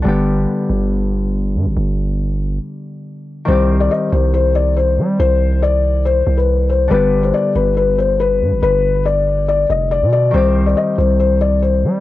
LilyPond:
<<
  \new Staff \with { instrumentName = "Felt piano" } { \time 4/4 \key c \minor \tempo 4 = 140 r1 | r1 | c''8. d''16 ees''8 c''8 c''8 d''8 c''4 | c''4 d''4 c''8. b'8. c''8 |
b'8. c''16 d''8 b'8 b'8 c''8 b'4 | b'4 d''4 d''8 ees''8 d''8 d''8 | c''8. d''16 ees''8 c''8 c''8 d''8 c''4 | }
  \new Staff \with { instrumentName = "Harp" } { \time 4/4 \key c \minor <d g b g'>1~ | <d g b g'>1 | <ees g c' g'>1~ | <ees g c' g'>1 |
<d g b g'>1~ | <d g b g'>1 | <ees g c' g'>1 | }
  \new Staff \with { instrumentName = "808-style bass" } { \clef bass \time 4/4 \key c \minor g,,4 r8 g,,2 g,16 g,,16 | g,,2 r2 | c,4 r8 c,2 g8 | c,2~ c,8 c,4. |
g,,4 r8 g,,2 g,16 g,,16 | g,,2~ g,,8 f,,8. b,8. | c,4 r8 c,2 g8 | }
>>